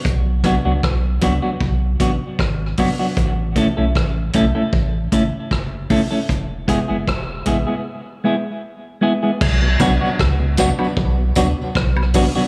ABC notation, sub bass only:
X:1
M:4/4
L:1/16
Q:1/4=77
K:Bdor
V:1 name="Sub bass" clef=bass
B,,,3 C,, B,,,2 C,, z B,,,2 A,,, z G,,,2 z2 | A,,,3 B,,, A,,,2 B,,, z A,,,2 G,,, z F,,,2 z2 | E,,,3 F,,, E,,,2 A,,, z8 z | B,,,2 B,,, z C,,3 z B,,,2 D,, z B,,,3 z |]